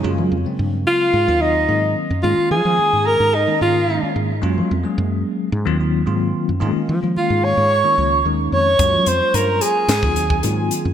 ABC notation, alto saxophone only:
X:1
M:4/4
L:1/8
Q:1/4=110
K:Gblyd
V:1 name="Alto saxophone"
z3 F2 E2 z | F A2 B E F2 z | z8 | z2 F d3 z d- |
d c B A4 z |]